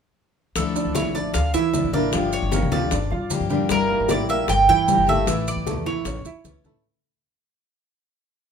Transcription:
0.56 D2 D3 F3 A3 D4 E4 A4, high bongo, high conga, maracas
0.76 D4 D5, high conga, maracas
0.85 D2
0.95 E4 C#5 E5, high bongo, high conga, maracas
1.05 A1
1.15 D4 D5, high bongo, high conga, maracas
1.34 D2 F5, muted steel-string acoustic guitar stroke, high bongo, high conga, maracas
1.54 D3 E3 E4 E5, high bongo, high conga, maracas
1.74 F3 A3 D4 E4, high bongo, low bongo, high conga, maracas
1.84 A1
1.93 F3 A3 A#3 D4 E4 A#4 D5, high bongo, high conga, maracas
2.13 G1 D3 F3 A#3 D4 F4 G4, high bongo, high conga, maracas
2.33 C#5, high conga, maracas
2.42 G1
2.52 A#3 A#4, high bongo, high conga, maracas
2.62 D2
2.72 F3 F4 D5, high bongo, high conga, maracas
2.91 G1 D4 D5, muted steel-string acoustic guitar stroke, high bongo, high conga, maracas
3.11 G2 F4 F5, high bongo, high conga
3.30 F3 A#3 D4 G4, high bongo, low bongo, high conga, maracas
3.40 G2
3.49 F3 G3 A#3 D4 G4, high bongo, high conga, maracas
3.69 G1 G3 A#3 E4 G4 A#4, high bongo, high conga, maracas
3.90 A#3 A#4, high conga
4.00 G1
4.09 E4 D5 E5, high bongo, high conga, maracas
4.20 A#1
4.29 A#3 A#4 E5, high bongo, high conga, maracas
4.48 G1 G5, muted steel-string acoustic guitar stroke, high bongo, high conga, maracas
4.68 G2 E3 E4 G5, high bongo, high conga
4.88 G3 A#3 E4 G4, high bongo, low bongo, high conga, maracas
4.98 G1
5.07 A3 A#3 E4 G4 A4 E5, high bongo, high conga, maracas
5.26 A1 E3 A3 E4, high bongo, high conga, maracas
5.47 D5, high conga, maracas
5.56 A1
5.66 A3 A4, high bongo, high conga, maracas
5.76 E2
5.86 E3 E4 C#5, high bongo, high conga, maracas
6.05 A1 C#4 C#5, muted steel-string acoustic guitar stroke, high bongo, high conga, maracas
6.25 E2 E4 E5, high bongo, high conga, maracas
6.44 C#2 E3 A3 C#4 E4, high bongo, low bongo, high conga, maracas
6.64 A1 A3 C#4 E4 A4, high bongo, high conga, maracas

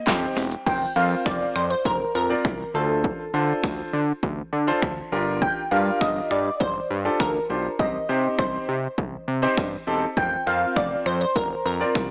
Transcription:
0.07 F2 C4 D#4 G4 C5 G5, kick, snare, clap, closed hi-hat, shaker
0.22 closed hi-hat, shaker
0.36 E1 C4, open hi-hat, shaker
0.51 closed hi-hat, shaker
0.66 F1 C4 F4 A#4 C5 G5, kick, crash
0.96 F2 C4 F4 A#4 C5 F5
1.26 F1 D5, finger snap, kick
1.56 F2 C5, finger snap
1.70 C5
1.85 F1 A#4, kick
2.15 F2 A#4
2.30 C4 F4 A#4 D5
2.45 C2, finger snap, kick
2.74 D2 D4 F4 A4 C5
3.04 kick
3.34 D3 D4 F4 A4 C5
3.64 D2, finger snap, kick
3.93 D3
4.23 D2, kick
4.53 D3
4.67 D4 F4 A4 C5
4.82 D2, finger snap, kick
5.12 G1 D4 F4 G4 A#4
5.42 G5, kick
5.71 G2 D4 F4 G4 A#4 F5
6.01 G1 D#5, finger snap, kick
6.31 G2 D5, finger snap
6.60 G1 C5, kick
6.90 G2
7.05 D4 F4 G4 A4
7.20 D2 A#4, finger snap, kick
7.50 B1 D4 F4 G4 C5
7.79 C2 C4 D#4 G4 C5 D#5, kick
8.09 C3 C4 D#4 G4 C5
8.39 C2 C5, finger snap, kick
8.69 C3
8.98 C2, kick
9.28 C3
9.42 C4 D#4 G4 C5
9.57 G2, finger snap, kick
9.87 E1 C4 D#4 G4 A4
10.17 F1 C4 F4 A#4 C5 G5, kick
10.46 F2 C4 F4 A#4 C5 F5
10.76 F1 D5, finger snap, kick
11.06 F2 C5, finger snap
11.21 C5
11.36 F1 A#4, kick
11.65 F2 A#4
11.80 C4 F4 A#4 D5
11.95 C2, finger snap, kick

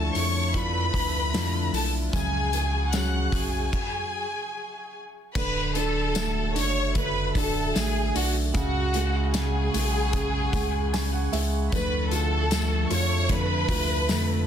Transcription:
Already playing: D2 D3 F3 A3 D4 E4 F4 A4 E5 A5
0.15 F2 C#5 C#6, hi-hat pedal, open hi-hat, tambourine
0.53 F3 A3 D4 E4 F4 B4 B5, kick, hi-hat pedal, open hi-hat, tambourine
0.93 D2 A3 D4 E4, kick, hi-hat pedal, open hi-hat, tambourine
1.33 F2 D3 F3 A3 D4 E4 F4, snare, hi-hat pedal, open hi-hat, tambourine
1.72 B1 A3 D4 E4 A4 A5, hi-hat pedal, open hi-hat, tambourine
2.12 C#2 C#3 F#3 C#4 F#4 G#4 F#5 G#5 C#6, kick, hi-hat pedal, open hi-hat, tambourine
2.53 C#4 F#4 G#4, hi-hat pedal, open hi-hat, tambourine
2.93 C#3 F#3 C#4 F#4 G#4 F#5 F#6, snare, hi-hat pedal, open hi-hat, tambourine
3.32 B1 G#4 G#5, kick, hi-hat pedal, open hi-hat, tambourine
3.73 kick, crash
5.35 D1 D3 F#4 B4 E5 B5, kick, crash, tambourine
5.75 D4 A4 A5, hi-hat pedal, open hi-hat, tambourine
6.15 A3, snare, hi-hat pedal, open hi-hat, tambourine
6.55 F#1 D4 C#5 C#6, hi-hat pedal, open hi-hat, tambourine
6.95 D3 B4 B5, kick, hi-hat pedal, open hi-hat
7.35 D1 D4 A4 A5, kick, hi-hat pedal, open hi-hat, tambourine
7.75 A1 A3 G#4 G#5, snare, hi-hat pedal, open hi-hat, tambourine
8.15 B1 D4 F#4 F#5, hi-hat pedal, open hi-hat, tambourine
8.54 C#2 C#3 F#4 G#4 F#5 C#6, kick, hi-hat pedal, open hi-hat, tambourine
8.94 G#3, hi-hat pedal, open hi-hat, tambourine
9.34 C#3 G#4 G#5, snare, hi-hat pedal, open hi-hat, tambourine
9.74 B1 G#3, hi-hat pedal, open hi-hat, tambourine
10.13 C#3, kick, hi-hat pedal, open hi-hat, tambourine
10.53 C#2 G#3, kick, hi-hat pedal, open hi-hat, tambourine
10.93 C#3 G#5, snare, hi-hat pedal, open hi-hat, tambourine
11.13 F#5
11.32 C#2 G#3 E5, hi-hat pedal, open hi-hat, tambourine
11.72 D2 D3 F3 A3 D4 E4 B4 E5 A5 B5, kick, hi-hat pedal, open hi-hat, tambourine
12.11 A3 D4 E4 F4 A4 A5, hi-hat pedal, open hi-hat, tambourine
12.51 D3 F3 A3 D4 E4, snare, hi-hat pedal, open hi-hat, tambourine
12.90 F2 F4 C#5 C#6, hi-hat pedal, open hi-hat, tambourine
13.29 D3 F3 A3 D4 E4 B4 B5, kick, hi-hat pedal, open hi-hat, tambourine
13.68 D2 A3 D4 E4 F4, kick, hi-hat pedal, open hi-hat, tambourine
14.08 F2 D3 F3 A3 D4 E4, snare, hi-hat pedal, open hi-hat, tambourine

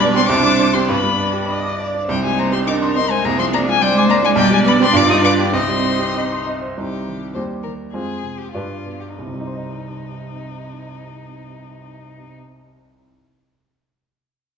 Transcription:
Already playing: B1 G3 D4 D5
0.01 B3 D5
0.14 C4 G4 C6
0.29 C2 D4 C5 D6
0.43 G3
0.59 C5
0.73 C4 G4 C6
0.88 G2 B3 D4 B4 B5
1.03 G3
1.19 D5
1.33 G4
1.48 D5 D#5
1.64 D6
1.78 D5
1.94 D4
2.07 C2 G3 D#4 C5 G5
2.24 G3 G#3 G#5
2.36 A#3 C5 A#5
2.52 C4 G4 C6
2.65 D4 A#4 D#5 D6
2.82 C6
2.96 C4 D#5 C6
3.09 G#3 C5 G#5
3.24 C2 A#3 D4 G#4 A#5
3.37 F3 C4 C6
3.53 A#3 D5 A#5
3.66 G#3 F4 G#5
3.79 G3 C5 D5 G5
3.93 G#3 D6
3.98 G#5
4.07 A#3 D5 A#5
4.23 G#3 D4 G#5
4.36 B1 G3 D4 D5 G5
4.50 G3 G#3 G#5
4.64 B3 D5 B5
4.79 C4 G4 C6
4.93 G2 D4 F4 D6
5.07 G3 D#4 D#6
5.22 D4 B4 D6
5.38 G4
5.53 C2 C4 D#4 D#5 C6
5.68 G3
5.85 C5
5.99 G4
6.15 D#5
6.31 C6
6.46 D#5
6.62 C5
6.77 C2 G3 D#4 G4 C5
7.08 D#3
7.34 D#2 G3 G4 C5
7.63 D#3 A#4
7.92 F2 G#3 F4 G#4 C5
8.23 C3
8.38 G4
8.52 G2 G3 D4 F4 B4
8.86 B2
9.00 G4
9.15 C2 C3 D#4
9.26 C3
9.33 G3
9.40 D#4
9.47 C5
9.54 D#5

